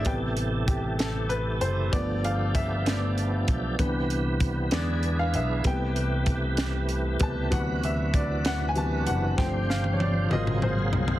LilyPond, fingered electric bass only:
\new Staff \with { instrumentName = "Fingered electric bass" } { \clef bass \time 6/8 \key a \minor \tempo 4. = 64 a,,2~ a,,8 fis,,8 | g,,2~ g,,8 b,,8 | c,4. r4 b,,8 | c,2~ c,8 des,8 |
d,2~ d,8 fis,,8 | g,,4. aes,,4 c,8 | }